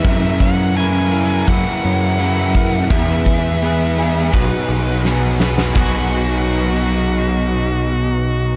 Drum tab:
CC |----------------|----------------|x---------------|
HH |o---o---o---o---|o---o---o-------|----------------|
SD |----------------|------------o-oo|----------------|
BD |o-o-----o-----o-|o-o-----o-------|o---------------|